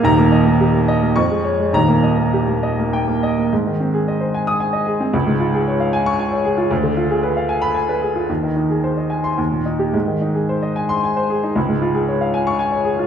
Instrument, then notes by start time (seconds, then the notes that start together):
upright piano
0.03 D#1 D#2 A#5
0.18 A#3
0.32 D#5
0.47 A#3
0.61 G4
0.74 A#3
0.88 D#5
1.02 A#3
1.16 F2 C#6
1.30 G#3
1.44 C#5
1.60 G#3
1.73 D#1 D#2 A#5
1.88 A#3
2.03 D#5
2.18 A#3
2.33 G4
2.47 A#3
2.63 D#5
2.79 A#3
2.93 G5
3.08 A#3
3.23 D#5
3.38 A#3
3.53 G#2
3.67 D#3
3.80 C4
3.94 G#4
4.08 D#5
4.21 C5
4.34 G#5
4.47 D#6
4.60 G#5
4.73 D#5
4.87 G#4
5.00 C4
5.13 C#2
5.27 G#2
5.40 F4
5.54 G#4
5.67 C#5
5.80 F5
5.93 G#5
6.06 C#6
6.19 G#5
6.32 C#5
6.45 G#4
6.57 F4
6.71 D2
6.83 D3
6.97 F4
7.10 G#4
7.23 B4
7.37 F5
7.49 G#5
7.62 B5
7.75 G#5
7.89 B4
8.02 G#4
8.15 F4
8.29 D#2
8.43 D#3
8.56 D#4
8.70 G#4
8.84 C5
8.97 D#5
9.10 G#5
9.24 C6
9.38 D#2
9.51 A#2
9.65 D#4
9.79 G4
9.94 G#2
10.07 D#3
10.21 D#4
10.34 G#4
10.49 C5
10.63 D#5
10.76 G#5
10.89 C6
11.04 G#5
11.17 C5
11.30 G#4
11.43 D#4
11.56 C#2
11.69 G#2
11.82 F4
11.95 G#4
12.08 C#5
12.21 F5
12.34 G#5
12.47 C#6
12.59 G#5
12.72 C#5
12.85 G#4
12.99 F4